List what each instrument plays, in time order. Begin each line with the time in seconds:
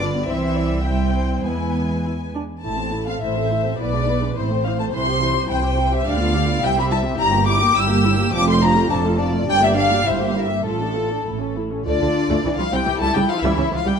Already playing: double bass section G1, violin section B4
0.00 cello section D3, viola section D4 F4, violin section D5
0.14 viola section B3 G4
0.28 double bass section C2, cello section E3, viola section C4 E4, violin section C5 E5
0.56 violin section D5
0.85 cello section G3, viola section C4 E4, violin section E5 G5
1.15 violin section C5
1.43 double bass section E2, cello section G#3, viola section B3 E4, violin section B4 G#5
2.04 viola section E4
2.34 viola section D4
2.63 double bass section A1, cello section A2, viola section A3 E4, violin section A5
2.78 viola section C4 A4
2.92 viola section A3 E4
3.08 viola section C4 A4, violin section F5
3.21 double bass section A1, cello section A2, viola section A3 E4, violin section C5 E5
3.36 viola section C4 A4
3.51 viola section A3 E4
3.64 viola section C4 A4
3.78 double bass section B1, cello section B2, viola section B3 E4, violin section B4 D5
3.92 viola section G#3 D4
4.07 viola section B3 E4
4.21 viola section G#3 D4
4.36 double bass section A1, cello section A2, viola section C4 E4, violin section C5
4.50 viola section A3 C4
4.65 viola section C4 E4, violin section F5
4.78 viola section A3 C4, violin section A5
4.93 double bass section C2, cello section C3, viola section E3 E4, violin section C6
5.06 viola section G3 G4
5.20 viola section E3 E4
5.34 viola section G3 G4
5.47 double bass section C2, cello section C3, viola section E3 E4, violin section G5
5.62 viola section G3 G4
5.76 viola section E3 E4
5.92 viola section G3 G4, violin section E5
6.05 double bass section D2, cello section D3, viola section D4 G4, violin section D5 F5
6.19 viola section B3 F4
6.33 viola section D4 G4
6.46 viola section B3 F4
6.61 double bass section C2, cello section C3, viola section G3 E4, violin section E5 G5
6.75 viola section C4 G4
6.80 violin section B5
6.90 viola section G3 E4, violin section A5
7.03 viola section C4 G4
7.17 double bass section G1, cello section G2, viola section G3 E4, violin section G4 A#5
7.32 viola section A#3 G4
7.46 viola section G3 E4, violin section D6
7.60 viola section A#3 G4
7.75 double bass section G1, cello section G2, viola section G3 E4, violin section E6
7.89 viola section A#3 G4
8.04 viola section G3 E4
8.17 viola section A#3 G4
8.32 double bass section F1, cello section F2, viola section F3 D4, violin section D6
8.47 viola section A3 F4, violin section C6
8.61 viola section F3 D4, violin section A#5
8.75 viola section A3 F4
8.90 double bass section F1, cello section F2, viola section F3 D4, violin section A4 A5
9.04 viola section A3 F4
9.18 viola section F3 D4, violin section D5
9.32 viola section A3 F4
9.46 double bass section G1, cello section G2, viola section G3 D4, violin section G5
9.60 viola section A#3 G4
9.64 violin section E5
9.74 viola section G3 D4, violin section F5
9.90 viola section A#3 G4
10.06 double bass section G1, cello section G2, viola section G3 E4, violin section C5 E5
10.14 violin section F5
10.20 viola section A#3 G4, violin section E5
10.32 viola section G3 E4, violin section F5
10.37 violin section A#4 E5
10.50 viola section A#3 G4
10.65 double bass section A1, cello section A2, viola section A3 F4, violin section A4
10.80 viola section D4 A4
10.94 viola section A3 F4
11.10 viola section D4 A4
11.24 double bass section A1, cello section A2, viola section A3 E4
11.39 viola section C#4 A4
11.56 viola section A3 E4
11.70 viola section C#4 A4
11.85 double bass section D2, cello section D3, viola section A3 F4, violin section D4 D5
12.01 double bass section D2, viola section D3
12.29 double bass section D2, viola section A3
12.43 double bass section C2, viola section E3 E4
12.58 double bass section C2, cello section F3, viola section G3, violin section F4 F5
12.71 double bass section C2, cello section G3, viola section C4, violin section G4 G5
12.85 double bass section C2, viola section E3
12.99 double bass section C#2, viola section G3, cello section A3, violin section A4 A5
13.14 double bass section C#2, viola section C#3, cello section G3, violin section G4 G5
13.28 cello section F3, violin section F4 F5
13.42 double bass section C#2, cello section E3, viola section G3, violin section E4 E5
13.57 double bass section C#2, viola section C#3
13.71 double bass section C#2, viola section E3, cello section F3, violin section F4
13.75 violin section F5
13.85 double bass section C#2, viola section G3, cello section G3, violin section G4 G5